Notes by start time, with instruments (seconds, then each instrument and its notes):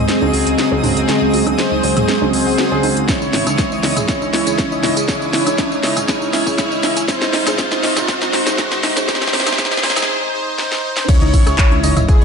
Already playing: ambient pad F#3 G#3 C4 D#5, synth texture D#5 D#6, riser
0.08 supersaw synth C4 G#4, synth pluck C4, snare, closed hi-hat
0.21 detuned saw bass C#2, grand piano C#3 C4 F#4 G#4, synth pluck D#4, high conga
0.33 detuned saw bass C#2, synth pluck F#4, open hi-hat
0.47 detuned saw bass C#2, synth pluck G#4, closed hi-hat
0.58 synth pluck C4, snare, closed hi-hat
0.72 detuned saw bass C#2, grand piano C#3 C4 F#4 G#4, synth pluck D#4
0.83 detuned saw bass C#2, supersaw synth C4 G#4, synth pluck F#4, mid tom, open hi-hat, high conga
0.96 detuned saw bass C#2, synth pluck G#4, closed hi-hat
1.08 grand piano C#3 C4 F#4 G#4, synth pluck C4, snare, closed hi-hat
1.22 detuned saw bass C#2, synth pluck D#4
1.33 detuned saw bass C#2, synth pluck F#4, open hi-hat
1.47 detuned saw bass C#2, grand piano C#3 C4 F#4 G#4, synth pluck G#4, closed hi-hat, high conga, high woodblock
1.58 synth pluck C4, supersaw synth G#4 C5, snare, closed hi-hat
1.72 detuned saw bass C#2, synth pluck D#4
1.83 detuned saw bass C#2, grand piano C#3 C4 F#4 C5, synth pluck F#4, open hi-hat
1.97 detuned saw bass C#2, synth pluck G#4, closed hi-hat, mid tom, high woodblock
2.08 synth pluck C4, snare, closed hi-hat
2.22 detuned saw bass C#2, grand piano C#3 C4 F#4 G#4, synth pluck D#4, high conga
2.33 detuned saw bass C#2, supersaw synth G#4 C5, synth pluck C5, open hi-hat
2.46 detuned saw bass C#2, synth pluck F#5, open hi-hat
2.58 synth pluck F#4, snare, closed hi-hat
2.72 detuned saw bass C#2, grand piano C#3 C4 F#4 G#4, synth pluck G#4
2.83 detuned saw bass C#2, synth pluck D#5, open hi-hat, high conga
2.97 detuned saw bass C#2, synth pluck D#4, closed hi-hat
3.08 grand piano C#3 E4 C#5 D#5, ambient pad C#3 E3, synth pluck C#4, supersaw synth E4 C#5, kick, snare, closed hi-hat, tambourine
3.22 detuned saw bass C#2, synth pluck D#4, tambourine
3.33 detuned saw bass G#1, synth pluck E4, snare, open hi-hat
3.47 detuned saw bass C#2, grand piano C#3 D#4 E4 C#5, synth pluck G#4, closed hi-hat, tambourine, high conga, high woodblock
3.58 synth pluck C#4, kick, snare, closed hi-hat, tambourine
3.72 detuned saw bass C#2, synth pluck D#4, tambourine
3.83 detuned saw bass C#2, grand piano C#3 D#4 E4 D#5, synth pluck E4, snare, open hi-hat
3.97 detuned saw bass C#2, synth pluck G#4, closed hi-hat, mid tom, tambourine, high woodblock
4.08 grand piano C#3 E4 C#5 D#5, synth pluck C#4, supersaw synth E4 C#5, kick, snare, closed hi-hat, tambourine
4.22 detuned saw bass C#2, synth pluck D#4, tambourine, high conga
4.33 detuned saw bass C#2, synth pluck E4, snare, open hi-hat
4.47 detuned saw bass C#2, grand piano C#3 D#4 E4 C#5, synth pluck G#4, closed hi-hat, tambourine
4.58 synth pluck C#4, kick, snare, closed hi-hat, tambourine
4.72 detuned saw bass C#2, synth pluck D#4, tambourine
4.83 detuned saw bass C#2, grand piano C#3 D#4 E4 D#5, synth pluck E4, snare, mid tom, open hi-hat, high conga
4.97 detuned saw bass C#2, synth pluck G#4, closed hi-hat, tambourine
5.08 grand piano C#3 E4 C#5 D#5, ambient pad C#4, synth pluck C#4, supersaw synth E4 C#5, kick, snare, closed hi-hat, tambourine
5.22 detuned saw bass C#2, synth pluck D#4, tambourine
5.33 detuned saw bass G#1, synth pluck E4, snare, open hi-hat
5.47 detuned saw bass C#2, grand piano C#3 D#4 E4 C#5, synth pluck G#4, closed hi-hat, tambourine, high conga, high woodblock
5.58 synth pluck C#4, kick, snare, closed hi-hat, tambourine
5.71 detuned saw bass C#2, synth pluck D#4, tambourine
5.83 detuned saw bass C#2, grand piano C#3 D#4 E4 D#5, synth pluck E4, snare, open hi-hat
5.96 detuned saw bass C#2, synth pluck G#4, closed hi-hat, mid tom, tambourine, high woodblock
6.08 grand piano C#3 E4 C#5 D#5, synth pluck C#4, supersaw synth E4 C#5, kick, snare, closed hi-hat, tambourine
6.21 detuned saw bass C#2, synth pluck D#4, tambourine, high conga
6.33 detuned saw bass C#2, synth pluck E4, snare, open hi-hat
6.47 detuned saw bass C#2, grand piano C#3 D#4 E4 C#5, synth pluck G#4, kick, tambourine
6.58 synth pluck C#4, kick, snare, closed hi-hat, tambourine
6.72 detuned saw bass C#2, synth pluck D#4, tambourine
6.83 detuned saw bass C#2, grand piano C#3 D#4 E4 D#5, synth pluck E4, snare, open hi-hat, high conga
6.97 detuned saw bass C#2, synth pluck G#4, closed hi-hat, tambourine
7.08 ambient pad C3 F#3 G#3 D#4, grand piano C3 D#4 C5, synth pluck C4, supersaw synth D#4 C5, kick, snare, closed hi-hat, tambourine
7.22 detuned saw bass C#2, synth pluck D#4, snare, tambourine
7.33 detuned saw bass C#2, synth pluck D#4, snare, open hi-hat
7.47 detuned saw bass C#2, grand piano C3 D#4 C5, synth pluck G#4, snare, closed hi-hat, tambourine, high conga, high woodblock
7.58 grand piano C3 D#4 C5, synth pluck C4, supersaw synth D#4 C5, kick, snare, closed hi-hat, tambourine
7.72 detuned saw bass C#2, synth pluck D#4, snare, tambourine
7.83 detuned saw bass C#2, synth pluck D#4, snare, open hi-hat
7.97 detuned saw bass C#2, grand piano C3 D#4 C5, synth pluck G#4, snare, closed hi-hat, mid tom, tambourine, high woodblock
8.08 grand piano C3 D#4 C5, synth pluck C4, supersaw synth D#4 C5, kick, snare, closed hi-hat, tambourine
8.22 detuned saw bass C#2, synth pluck D#4, snare, tambourine, high conga
8.33 detuned saw bass C#2, synth pluck D#4, snare, open hi-hat
8.46 detuned saw bass C#2, grand piano C3 D#4 C5, synth pluck G#4, snare, closed hi-hat, tambourine
8.58 grand piano C3 D#4 C5, synth pluck C4, supersaw synth D#4 C5, kick, snare, closed hi-hat, tambourine
8.72 detuned saw bass C#2, synth pluck D#4, snare, tambourine
8.83 detuned saw bass C#2, synth pluck D#4, snare, mid tom, open hi-hat, high conga
8.96 detuned saw bass C#2, grand piano C3 D#4 C5, synth pluck G#4, snare, closed hi-hat, tambourine
9.08 grand piano C3 D#4 C5, synth pluck C4, supersaw synth D#4 C5, kick, snare, closed hi-hat, tambourine
9.15 snare
9.22 detuned saw bass C#2, synth pluck D#4, snare, tambourine
9.28 snare
9.33 detuned saw bass C#2, grand piano C3 D#4 C5, synth pluck C4, supersaw synth D#4 C5, snare, open hi-hat
9.40 snare
9.47 detuned saw bass C#2, synth pluck D#4, snare, closed hi-hat, tambourine, high conga, high woodblock
9.53 snare
9.58 grand piano C3 D#4 C5, synth pluck C4, supersaw synth D#4 C5, kick, snare, closed hi-hat, tambourine
9.65 snare
9.72 detuned saw bass C#2, synth pluck D#4, snare, tambourine
9.77 snare
9.83 detuned saw bass C#2, grand piano C3 D#4 C5, synth pluck C4, supersaw synth D#4 C5, snare, open hi-hat
9.90 snare
9.97 detuned saw bass C#2, synth pluck D#4, snare, closed hi-hat, mid tom, tambourine, high woodblock
10.03 snare
10.09 supersaw synth D#4 C5
10.33 supersaw synth D#4 C5
10.58 supersaw synth D#4 C5, snare
10.72 snare
10.84 supersaw synth D#4 C5
10.97 snare
11.08 ambient pad C#3 E3 G#3 D#5, grand piano C#3 E4 C#5 D#5, synth pluck C#4 C#5, supersaw synth E4 C#5, kick, closed hi-hat, crash, tambourine, sub drop
11.22 detuned saw bass C#2, synth pluck D#4 D#5, closed hi-hat
11.33 detuned saw bass G#1, synth pluck E4 E5, kick, open hi-hat, tambourine
11.47 detuned saw bass C#2, grand piano C#3 D#4 E4 C#5, synth pluck G#4 G#5, cross-stick, closed hi-hat, tambourine, high woodblock
11.58 synth pluck C#5 C#6, kick, clap, closed hi-hat, tambourine
11.72 detuned saw bass C#2, synth pluck C#4 C#5, closed hi-hat, high conga
11.83 detuned saw bass C#2, grand piano C#3 D#4 E4 D#5, synth pluck D#4 D#5, open hi-hat, tambourine
11.97 detuned saw bass C#2, synth pluck E4 E5, closed hi-hat, mid tom, tambourine, high woodblock
12.08 supersaw synth E4 G#4, synth pluck G#4 G#5, kick, closed hi-hat, tambourine